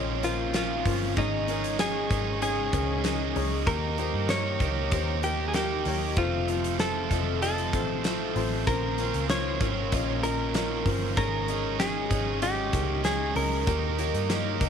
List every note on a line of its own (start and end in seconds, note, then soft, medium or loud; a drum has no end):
0.00 0.82 A#1 medium
0.00 0.54 A#2 medium
0.00 1.19 A#2 medium
0.00 0.52 F3 medium
0.00 0.54 C4 medium
0.00 0.23 C#4 medium
0.00 0.54 C#4 medium
0.00 0.24 F4 medium
0.00 0.55 F4 medium
0.00 0.24 A#4 medium
0.00 1.15 A#4 medium
0.00 0.24 C5 loud
0.00 0.27 C#5 loud
0.00 1.18 C#5 medium
0.00 0.16 D#5 loud
0.00 1.15 F5 medium
0.00 1.15 C6 loud
0.23 0.47 C#4 medium
0.23 0.47 F4 medium
0.23 0.55 F4 medium
0.23 0.47 A#4 medium
0.23 0.47 C5 medium
0.23 snare soft
0.23 closed hi-hat medium
0.53 1.16 F3 medium
0.53 1.17 C4 medium
0.53 1.17 C#4 medium
0.53 0.78 C#4 medium
0.53 0.78 F4 medium
0.53 1.14 F4 medium
0.53 1.18 F4 medium
0.53 0.79 A#4 medium
0.53 0.79 C5 medium
0.53 snare loud
0.53 closed hi-hat medium
0.86 1.15 G1 medium
0.86 1.09 C#4 medium
0.86 1.10 F4 medium
0.86 1.10 A#4 medium
0.86 1.10 C5 medium
0.86 kick medium
0.86 open hi-hat medium
1.16 2.07 G#1 medium
1.16 1.48 G#2 medium
1.16 2.07 G#2 medium
1.16 1.48 C#3 medium
1.16 1.48 G#3 medium
1.16 1.48 C#4 medium
1.16 1.41 C#4 medium
1.16 1.41 D#4 medium
1.16 1.47 D#4 loud
1.16 1.76 D#4 medium
1.16 3.65 G#4 medium
1.16 1.41 G#4 medium
1.16 1.46 G#4 loud
1.16 1.41 C#5 loud
1.16 6.13 D#5 medium
1.16 3.65 C#6 medium
1.16 kick loud
1.16 closed hi-hat medium
1.47 1.77 G#3 soft
1.47 1.72 C#4 medium
1.47 1.78 C#4 medium
1.47 1.79 D#4 medium
1.47 1.72 D#4 medium
1.47 1.79 G#4 medium
1.47 1.72 G#4 medium
1.47 1.72 A#4 medium
1.47 closed hi-hat medium
1.64 closed hi-hat medium
1.78 2.10 G#3 medium
1.78 2.03 C#4 medium
1.78 2.10 C#4 medium
1.78 2.03 D#4 medium
1.78 2.09 D#4 medium
1.78 2.03 G#4 medium
1.78 2.41 G#4 medium
1.78 2.08 G#4 medium
1.78 2.03 D#5 medium
1.78 snare loud
1.78 closed hi-hat medium
2.09 2.69 G#1 medium
2.09 2.41 G#3 medium
2.09 2.34 C#4 medium
2.09 2.41 C#4 medium
2.09 2.41 D#4 medium
2.09 2.34 D#4 medium
2.09 2.41 G#4 medium
2.09 2.34 G#4 medium
2.09 2.34 A#4 medium
2.09 kick medium
2.09 closed hi-hat medium
2.41 3.04 G#2 medium
2.41 3.04 C#3 medium
2.41 3.02 G#3 loud
2.41 2.66 C#4 medium
2.41 3.03 C#4 loud
2.41 2.66 D#4 medium
2.41 3.05 D#4 loud
2.41 2.66 G#4 medium
2.41 3.67 G#4 medium
2.41 3.05 G#4 loud
2.41 2.66 C#5 medium
2.41 closed hi-hat medium
2.73 3.32 C#2 medium
2.73 2.97 C#4 medium
2.73 2.97 D#4 medium
2.73 2.97 G#4 medium
2.73 2.97 A#4 medium
2.73 kick medium
2.73 closed hi-hat medium
3.03 3.66 G#3 medium
3.03 3.28 C#4 medium
3.03 3.66 C#4 medium
3.03 3.28 D#4 medium
3.03 3.67 D#4 medium
3.03 3.28 G#4 medium
3.03 3.68 G#4 medium
3.03 3.28 A#4 medium
3.03 snare medium
3.03 closed hi-hat medium
3.35 3.65 C#2 loud
3.35 3.59 C#4 medium
3.35 3.59 D#4 medium
3.35 3.60 G#4 medium
3.35 3.60 C#5 medium
3.35 open hi-hat medium
3.66 4.11 D#2 loud
3.66 3.98 D#3 medium
3.66 4.57 D#3 medium
3.66 3.90 A#3 medium
3.66 3.98 A#3 medium
3.66 3.91 D#4 medium
3.66 3.98 D#4 medium
3.66 6.15 G4 medium
3.66 3.91 G4 medium
3.66 3.97 G4 loud
3.66 3.91 A#4 medium
3.66 4.30 A#4 loud
3.66 6.14 A#5 medium
3.66 kick loud
3.66 closed hi-hat medium
3.98 4.22 A#3 medium
3.98 4.29 A#3 soft
3.98 4.22 D#4 medium
3.98 4.29 D#4 soft
3.98 4.29 G4 medium
3.98 4.22 G4 medium
3.98 4.22 C5 medium
3.98 closed hi-hat medium
4.14 4.58 G2 loud
4.28 4.60 D#3 medium
4.28 4.53 A#3 medium
4.28 4.61 A#3 medium
4.28 4.53 D#4 medium
4.28 4.60 D#4 medium
4.28 4.53 G4 medium
4.28 4.58 G4 medium
4.28 4.53 A#4 medium
4.28 5.23 C#5 medium
4.28 snare loud
4.28 closed hi-hat medium
4.59 4.90 C#2 medium
4.59 4.84 A#3 medium
4.59 4.90 A#3 medium
4.59 4.84 D#4 medium
4.59 4.91 D#4 medium
4.59 4.91 G4 medium
4.59 4.85 G4 medium
4.59 4.85 A#4 medium
4.59 kick medium
4.59 closed hi-hat medium
4.91 5.82 D#2 loud
4.91 5.52 D#3 medium
4.91 5.54 A#3 medium
4.91 5.16 A#3 medium
4.91 5.55 D#4 medium
4.91 5.16 D#4 medium
4.91 5.16 G4 medium
4.91 5.55 G4 loud
4.91 5.16 C5 medium
4.91 kick loud
4.91 closed hi-hat medium
5.23 5.47 A#3 medium
5.23 5.47 D#4 medium
5.23 5.48 G4 medium
5.23 5.48 A#4 medium
5.23 closed hi-hat medium
5.48 5.55 G#4 medium
5.54 6.16 D#3 medium
5.54 6.17 A#3 medium
5.54 5.79 A#3 medium
5.54 5.79 D#4 medium
5.54 6.17 D#4 medium
5.54 6.19 G4 medium
5.54 5.79 G4 medium
5.54 6.18 G4 medium
5.54 5.79 A#4 medium
5.54 snare medium
5.54 closed hi-hat medium
5.85 6.15 D#2 medium
5.85 6.10 A#3 medium
5.85 6.10 D#4 medium
5.85 6.10 G4 medium
5.85 6.10 C#5 medium
5.85 open hi-hat medium
6.16 7.07 F1 loud
6.16 6.79 F2 medium
6.16 6.79 C3 medium
6.16 6.78 F3 medium
6.16 6.78 A3 loud
6.16 6.41 C4 medium
6.16 6.80 C4 medium
6.16 6.41 F4 medium
6.16 6.76 F4 medium
6.16 8.65 A4 medium
6.16 6.41 A4 medium
6.16 6.80 A4 loud
6.16 6.41 C5 loud
6.16 8.65 F5 medium
6.16 11.13 C6 medium
6.16 kick loud
6.16 closed hi-hat medium
6.48 6.72 C4 medium
6.48 6.72 F4 medium
6.48 6.72 A4 medium
6.48 6.73 C5 medium
6.48 closed hi-hat medium
6.64 closed hi-hat medium
6.79 7.10 F3 medium
6.79 7.10 A3 medium
6.79 7.03 C4 medium
6.79 7.10 C4 medium
6.79 7.04 F4 medium
6.79 7.41 A4 medium
6.79 7.04 A4 medium
6.79 7.08 A4 medium
6.79 7.04 C5 medium
6.79 snare loud
6.79 closed hi-hat medium
7.10 7.73 F1 medium
7.10 7.41 F3 medium
7.10 7.41 A3 medium
7.10 7.41 C4 medium
7.10 7.35 C4 medium
7.10 7.35 F4 medium
7.10 7.42 A4 medium
7.10 7.35 A4 medium
7.10 7.35 D#5 medium
7.10 kick medium
7.10 closed hi-hat medium
7.41 8.04 F2 loud
7.41 8.04 C3 medium
7.41 8.03 F3 medium
7.41 8.03 A3 medium
7.41 7.66 C4 medium
7.41 8.05 C4 medium
7.41 7.66 F4 medium
7.41 8.67 A4 medium
7.41 7.66 A4 medium
7.41 8.05 A4 medium
7.41 7.66 D#5 loud
7.41 closed hi-hat medium
7.58 closed hi-hat soft
7.73 8.32 A1 medium
7.73 7.97 C4 medium
7.73 7.97 F4 medium
7.73 7.97 A4 medium
7.73 7.97 C5 medium
7.73 kick loud
7.73 closed hi-hat medium
8.04 8.67 F3 medium
8.04 8.67 A3 medium
8.04 8.28 C4 medium
8.04 8.68 C4 medium
8.04 8.28 F4 medium
8.04 8.28 A4 medium
8.04 8.68 A4 medium
8.04 8.28 C5 medium
8.04 snare loud
8.04 closed hi-hat medium
8.36 8.65 A1 loud
8.36 8.60 C4 medium
8.36 8.60 F4 medium
8.36 8.60 A4 medium
8.36 8.60 C5 medium
8.36 open hi-hat medium
8.66 9.11 A#1 loud
8.66 8.98 A#2 medium
8.66 9.57 A#2 medium
8.66 8.98 F3 medium
8.66 8.98 C4 medium
8.66 8.91 C#4 medium
8.66 8.99 C#4 loud
8.66 8.91 F4 medium
8.66 8.96 F4 loud
8.66 11.15 A#4 medium
8.66 9.26 A#4 loud
8.66 8.91 A#4 medium
8.66 8.91 C5 loud
8.66 11.15 F5 medium
8.66 kick loud
8.66 closed hi-hat medium
8.98 9.29 C4 soft
8.98 9.22 C#4 medium
8.98 9.29 C#4 soft
8.98 9.29 F4 medium
8.98 9.22 F4 medium
8.98 9.23 A#4 medium
8.98 9.23 C5 medium
8.98 closed hi-hat medium
9.14 9.58 C#2 medium
9.14 closed hi-hat medium
9.29 9.60 F3 medium
9.29 9.60 C4 medium
9.29 9.53 C#4 medium
9.29 9.61 C#4 medium
9.29 9.53 F4 medium
9.29 9.58 F4 medium
9.29 9.54 A#4 medium
9.29 9.54 C5 medium
9.29 10.20 C#5 medium
9.29 snare loud
9.29 closed hi-hat medium
9.60 9.90 G#1 medium
9.60 9.92 C4 medium
9.60 9.85 C#4 medium
9.60 9.91 C#4 soft
9.60 9.92 F4 medium
9.60 9.85 F4 medium
9.60 9.85 A#4 medium
9.60 9.85 C#5 medium
9.60 kick medium
9.60 closed hi-hat medium
9.91 10.82 A#1 loud
9.91 10.54 A#2 medium
9.91 10.52 F3 medium
9.91 10.54 C4 medium
9.91 10.16 C#4 medium
9.91 10.54 C#4 loud
9.91 10.16 F4 medium
9.91 10.55 F4 loud
9.91 10.16 A#4 medium
9.91 10.16 D#5 medium
9.91 kick medium
9.91 closed hi-hat medium
10.23 10.47 C#4 medium
10.23 10.47 F4 medium
10.23 11.13 A#4 medium
10.23 10.47 A#4 medium
10.23 10.48 D#5 medium
10.23 closed hi-hat medium
10.54 11.17 F3 medium
10.54 11.18 C4 medium
10.54 11.17 C#4 medium
10.54 10.78 C#4 medium
10.54 10.78 F4 medium
10.54 11.18 F4 medium
10.54 10.78 A#4 medium
10.54 10.79 D#5 medium
10.54 snare loud
10.54 closed hi-hat medium
10.86 11.15 G1 medium
10.86 11.10 C#4 medium
10.86 11.10 F4 medium
10.86 11.10 A#4 medium
10.86 11.10 C5 medium
10.86 kick medium
10.86 open hi-hat medium
11.16 12.07 G#1 loud
11.16 11.48 G#2 medium
11.16 12.07 G#2 medium
11.16 11.48 C#3 medium
11.16 11.49 G#3 loud
11.16 13.65 G#3 medium
11.16 11.41 C#4 medium
11.16 11.49 C#4 medium
11.16 11.41 D#4 medium
11.16 11.48 D#4 loud
11.16 11.41 G#4 medium
11.16 11.47 G#4 loud
11.16 11.79 A#4 medium
11.16 11.41 C#5 loud
11.16 14.69 D#5 medium
11.16 13.65 C#6 medium
11.16 kick loud
11.16 closed hi-hat medium
11.48 11.78 G#3 soft
11.48 11.72 C#4 medium
11.48 11.79 C#4 soft
11.48 11.80 D#4 medium
11.48 11.72 D#4 medium
11.48 11.80 G#4 medium
11.48 11.73 G#4 medium
11.48 11.73 D#5 medium
11.48 closed hi-hat medium
11.79 12.11 G#3 medium
11.79 12.04 C#4 medium
11.79 12.11 C#4 medium
11.79 12.04 D#4 medium
11.79 12.10 D#4 medium
11.79 12.38 G#4 medium
11.79 12.04 G#4 medium
11.79 12.09 G#4 medium
11.79 12.04 C#5 medium
11.79 snare loud
11.79 closed hi-hat medium
12.10 12.69 G#1 loud
12.10 12.41 G#3 medium
12.10 12.35 C#4 medium
12.10 12.41 C#4 medium
12.10 12.35 D#4 medium
12.10 12.42 D#4 medium
12.10 12.42 G#4 medium
12.10 12.35 G#4 medium
12.10 12.35 C#5 medium
12.10 kick medium
12.10 closed hi-hat medium
12.41 13.04 G#2 medium
12.41 13.04 C#3 loud
12.41 13.03 G#3 medium
12.41 12.66 C#4 medium
12.41 13.04 C#4 medium
12.41 13.06 D#4 medium
12.41 12.66 D#4 medium
12.41 13.01 G4 loud
12.41 12.66 G#4 medium
12.41 13.05 G#4 loud
12.41 12.66 D#5 medium
12.41 closed hi-hat loud
12.73 13.32 C#2 medium
12.73 12.97 C#4 medium
12.73 12.97 D#4 medium
12.73 12.98 G#4 medium
12.73 12.98 A#4 medium
12.73 kick loud
12.73 snare soft
12.73 closed hi-hat medium
13.04 13.66 G#3 medium
13.04 13.28 C#4 medium
13.04 13.67 C#4 medium
13.04 13.29 D#4 medium
13.04 13.67 D#4 medium
13.04 13.36 G#4 medium
13.04 13.29 G#4 medium
13.04 13.68 G#4 medium
13.04 13.29 C#5 medium
13.04 snare medium
13.04 closed hi-hat medium
13.35 13.65 C#2 loud
13.35 13.59 C#4 medium
13.35 13.60 D#4 medium
13.35 13.60 G#4 medium
13.35 14.69 A#4 medium
13.35 13.60 C#5 medium
13.35 open hi-hat medium
13.66 14.11 D#2 loud
13.66 13.98 D#3 medium
13.66 14.57 D#3 medium
13.66 13.91 A#3 medium
13.66 13.98 A#3 medium
13.66 13.91 D#4 medium
13.66 13.98 D#4 loud
13.66 13.91 G4 medium
13.66 13.96 G4 loud
13.66 14.69 G4 medium
13.66 13.91 A#4 loud
13.66 14.69 A#5 loud
13.66 kick loud
13.66 closed hi-hat medium
13.98 14.22 A#3 medium
13.98 14.28 A#3 soft
13.98 14.22 D#4 medium
13.98 14.29 D#4 soft
13.98 14.29 G4 medium
13.98 14.22 G4 medium
13.98 14.22 C#5 medium
13.98 closed hi-hat medium
14.14 14.58 G2 medium
14.14 closed hi-hat soft
14.29 14.61 D#3 medium
14.29 14.61 A#3 medium
14.29 14.54 A#3 medium
14.29 14.54 D#4 medium
14.29 14.61 D#4 medium
14.29 14.54 G4 medium
14.29 14.59 G4 medium
14.29 14.54 A#4 medium
14.29 snare loud
14.29 closed hi-hat medium
14.60 14.69 C#2 medium
14.60 14.69 A#3 medium
14.60 14.69 D#4 medium
14.60 14.69 G4 medium
14.60 14.69 A#4 medium
14.60 kick medium
14.60 closed hi-hat medium